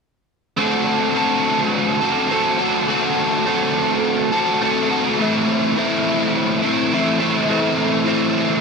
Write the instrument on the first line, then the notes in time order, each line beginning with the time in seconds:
overdriven electric guitar
0.57 D3 A3 C4 F#4 A4
1.15 A3 C4 F#4 A4
2.01 C4 F#4 A4
2.30 A3 C4 F#4 A4
2.58 C4 F#4 A4
2.87 D3 A3 C4 F#4 A4
3.46 A3 C4 F#4 A4
4.32 C4 F#4 A4
4.61 A3 C4 F#4 A4
4.90 C4 F#4 A4
5.19 A2 E3 A3 C4 E4
5.76 E3 A3 C4 E4
6.62 A3 C4 E4
6.92 E3 A3 C4 E4
7.20 A3 C4 E4
7.49 A2 E3 A3 C4 E4
8.06 E3 A3 C4 E4